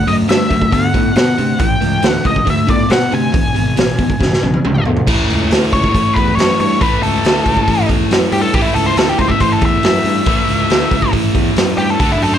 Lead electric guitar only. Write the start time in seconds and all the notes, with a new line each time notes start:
0.08 D#5
0.29 E5
0.73 F#5
1.17 F#5
1.60 G5
2.08 F#5
2.26 D#5
2.50 E5
2.70 D5
2.91 F#5
3.15 G#5
5.73 C#5
6.14 B4
6.35 C#5
6.60 C#5
6.81 B4
7.03 A4
8.33 G4
8.41 A4
8.54 G4
8.62 E4
8.74 A4
8.86 C5
8.98 A4
9.09 G4
9.18 C5
9.28 E5
9.41 C5
9.52 A4
9.66 E5
9.85 E5
11.78 G4
11.90 A4
12.00 A4
12.12 E4
12.23 A4
12.34 C5